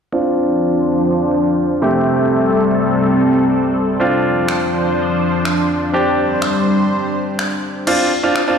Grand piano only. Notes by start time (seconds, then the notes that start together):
0.12 C4 D4 F4
1.82 C3 A3 C4 G4
4.00 C4 D4 F4
5.93 C4 D4 G4
7.87 C4 D4 F4
8.23 C4 D4 F4
8.47 C4 D4 F4